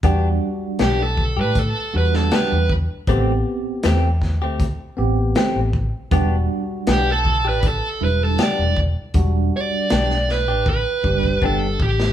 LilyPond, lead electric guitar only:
\new Staff \with { instrumentName = "Lead electric guitar" } { \time 4/4 \key e \minor \tempo 4 = 79 r4 g'16 a'8 b'16 a'8 b'16 a'16 b'8 r8 | r1 | r4 g'16 a'8 b'16 a'8 b'16 a'16 d''8 r8 | r8 d''4 b'8 b'4 a'8 g'8 | }